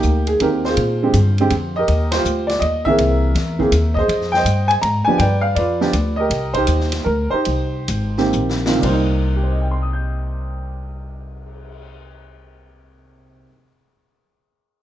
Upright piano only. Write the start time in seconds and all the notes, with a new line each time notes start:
Already playing: A#3 D#4 G4
0.27 G#4
0.41 D#3 A#3 C4 G4 A#4
0.65 F4 G#4 C5
1.03 D3 G#3 C4 G4
1.40 D3 G#3 C4 G4
1.76 G4 A#4 D#5
2.12 G4 C5
2.16 F4
2.47 D5
2.59 D#5
2.85 E3 A#3 C4 G#4 A#4 E5
3.59 E3 A#3 C4 G#4
3.94 G#4 D#5
3.99 C5
4.32 G5
4.36 C5 D#5
4.68 G#5
4.82 A#5
5.05 F3 B3 D4 G4 G#5
5.18 B4 D5 G5
5.41 F5
5.55 F4 B4 D5
5.81 F3 B3 D4 G4
6.16 G4 A#4 D#5
6.54 D#4 G4 C5
7.04 A#4
7.30 D#4 G4 C5
8.18 D#3 A#3 C4 G4
8.67 D#3 A#3 C4 F4
8.78 C3 G3
8.84 A#3 C5
8.90 D#4
9.36 G4
9.44 C5
9.51 D#5
9.62 G5
9.71 C6
9.82 D#6
9.93 G6